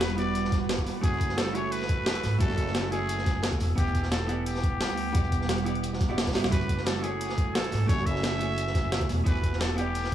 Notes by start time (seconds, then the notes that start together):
Already playing: E1 G3 B3 E4 F#4 G4 B4 D5 F#5 B5
0.01 snare, closed hi-hat
0.10 closed hi-hat
0.16 B3 E4 F#4 G4 D5, closed hi-hat
0.20 D5
0.35 closed hi-hat
0.44 snare
0.52 kick, snare, closed hi-hat
0.69 snare, closed hi-hat
0.78 kick, closed hi-hat
0.86 snare, closed hi-hat, open hi-hat
1.01 F#1 A3 E4 F#4 G#4 G#5 E6, kick, closed hi-hat
1.06 C#5
1.13 closed hi-hat
1.21 kick, closed hi-hat
1.29 snare
1.38 A4, snare, closed hi-hat
1.47 closed hi-hat
1.53 A3 E4 F#4 G#4 C#5, closed hi-hat
1.57 C#5
1.72 B4, closed hi-hat, open hi-hat
1.82 snare
1.89 kick, closed hi-hat
2.06 snare, closed hi-hat
2.15 closed hi-hat
2.23 G#1, snare, closed hi-hat, open hi-hat
2.39 F#1 A3 E4 F#4 A4 G#5, kick, closed hi-hat
2.43 C#5
2.50 closed hi-hat
2.58 kick, closed hi-hat
2.67 snare
2.74 snare, closed hi-hat
2.90 A3 E4 F#4 G#4, closed hi-hat
2.95 C#5
3.09 closed hi-hat
3.18 snare
3.25 kick, snare, closed hi-hat
3.43 snare, closed hi-hat
3.52 kick, closed hi-hat
3.60 E1, snare, closed hi-hat, open hi-hat
3.75 E1 G3 B3 E4 G4 F#5 D6, kick, closed hi-hat
3.80 D5
3.87 closed hi-hat
3.95 kick, closed hi-hat
4.03 snare
4.11 A4, snare, closed hi-hat
4.22 closed hi-hat
4.27 B3 E4 G4 F#5, closed hi-hat
4.32 D5
4.46 G4, closed hi-hat, open hi-hat
4.55 snare
4.63 kick, closed hi-hat
4.81 D2, snare, closed hi-hat
4.89 closed hi-hat
4.97 open hi-hat
5.13 E1 B3 E4 G4 F#5, kick, closed hi-hat
5.17 D5
5.24 closed hi-hat
5.32 kick, closed hi-hat
5.41 snare
5.49 snare, closed hi-hat
5.58 closed hi-hat
5.64 B3 E4 G4 F#5, closed hi-hat
5.69 D5
5.75 closed hi-hat
5.83 closed hi-hat
5.93 snare
6.00 kick, snare, closed hi-hat
6.08 B3 E4 F#4 G4 D5
6.18 snare, closed hi-hat
6.26 kick, snare, closed hi-hat
6.31 B3 E4 F#4, snare, closed hi-hat
6.35 G1 G4 E5, snare, closed hi-hat, open hi-hat
6.44 B1, snare, closed hi-hat
6.50 F#1 A3 E4 F#4 G#4 B4 G#5 E6, kick, closed hi-hat
6.54 C#5
6.61 closed hi-hat
6.69 kick, closed hi-hat
6.77 snare
6.86 A4, snare, closed hi-hat
6.96 closed hi-hat
7.01 A3 E4 F#4 G#4 G#5, closed hi-hat
7.06 C#5
7.21 closed hi-hat, open hi-hat
7.29 snare
7.38 kick, closed hi-hat
7.54 A4, snare, closed hi-hat
7.64 closed hi-hat
7.72 G#1, snare, closed hi-hat, open hi-hat
7.87 F#1 A3 E4 F#4 G#4 C#5, kick, closed hi-hat
7.92 C#5
7.99 closed hi-hat
8.06 E5, kick, closed hi-hat
8.16 snare
8.23 snare, closed hi-hat
8.38 A3 E4 F#4 G#4, closed hi-hat
8.43 C#5
8.57 closed hi-hat
8.67 snare
8.75 kick, snare, closed hi-hat
8.92 snare, closed hi-hat
9.01 kick, closed hi-hat
9.09 E1, snare, closed hi-hat, open hi-hat
9.24 E1 G3 B3 E4 F#4 G4 B4 F#5 D6, kick, closed hi-hat
9.29 D5
9.36 closed hi-hat
9.43 kick, closed hi-hat
9.53 snare
9.61 A4, snare, closed hi-hat
9.69 closed hi-hat
9.76 B3 E4 G4 F#5, closed hi-hat
9.80 D5
9.95 closed hi-hat, open hi-hat
10.04 snare